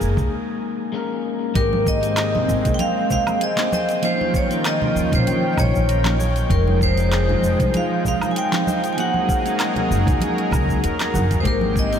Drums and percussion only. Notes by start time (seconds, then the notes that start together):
0.01 cabasa
0.17 kick, low conga, cabasa
1.55 kick, closed hi-hat, cabasa
1.73 high conga
1.87 kick, cabasa
2.03 closed hi-hat, cabasa
2.17 clap, closed hi-hat, cabasa, low woodblock
2.35 high conga, low conga
2.49 cabasa
2.65 kick, closed hi-hat, low conga, cabasa
2.79 closed hi-hat, high conga, cabasa
3.10 kick, low conga, cabasa
3.27 high conga, cabasa, low woodblock
3.41 closed hi-hat, cabasa
3.58 clap, closed hi-hat
3.72 high conga, cabasa
3.89 closed hi-hat, cabasa
4.03 closed hi-hat, cabasa
4.21 high conga
4.34 kick, cabasa
4.51 closed hi-hat, cabasa
4.65 clap, closed hi-hat, cabasa, low woodblock
4.82 high conga, low conga
4.97 cabasa
5.12 kick, closed hi-hat, low conga, cabasa
5.27 closed hi-hat, high conga, cabasa
5.58 kick, low conga, cabasa, low woodblock
5.74 kick, high conga, cabasa
5.89 closed hi-hat, cabasa
6.05 clap, closed hi-hat, low woodblock
6.20 high conga, cabasa
6.36 closed hi-hat, cabasa
6.50 kick, closed hi-hat, cabasa
6.68 high conga
6.81 kick, cabasa
6.97 closed hi-hat, cabasa
7.12 clap, closed hi-hat, cabasa, low woodblock
7.29 high conga, low conga
7.44 cabasa
7.60 kick, closed hi-hat, low conga, cabasa
7.74 closed hi-hat, high conga, cabasa
8.05 kick, low conga, cabasa
8.21 high conga, cabasa, low woodblock
8.36 closed hi-hat, cabasa
8.53 clap, closed hi-hat
8.67 high conga, cabasa
8.84 closed hi-hat, cabasa
8.98 closed hi-hat, cabasa
9.14 high conga
9.29 kick, cabasa
9.46 closed hi-hat, cabasa
9.60 clap, closed hi-hat, cabasa, low woodblock
9.76 closed hi-hat, high conga, low conga
9.92 cabasa
10.07 kick, closed hi-hat, low conga, cabasa
10.20 closed hi-hat, high conga, cabasa
10.38 closed hi-hat
10.51 kick, low conga, cabasa, low woodblock
10.69 kick, high conga, cabasa
10.84 closed hi-hat, cabasa
11.00 clap, closed hi-hat, low woodblock
11.14 high conga, cabasa
11.31 closed hi-hat, cabasa
11.45 kick, closed hi-hat, cabasa
11.61 high conga
11.76 kick, cabasa
11.93 closed hi-hat, cabasa